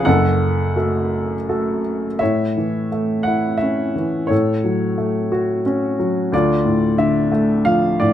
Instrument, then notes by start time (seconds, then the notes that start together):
upright piano
0.05 F#1 F#2 A4 F#5
0.76 A3 F#4 A4
1.49 A3 F#4 A4
2.19 A2 C#5 E5
2.57 E3
2.92 A3
3.23 F#5
3.27 E4
3.58 E5
3.62 C#4
3.96 E3
4.27 A2 A4 C#5
4.64 F#3
4.98 A3
5.32 F#4
5.66 C#4
5.99 F#3
6.32 D2 F4 D5
6.65 A2
6.98 D3 E5
7.32 A3
7.65 F3 F5
8.00 A2 D5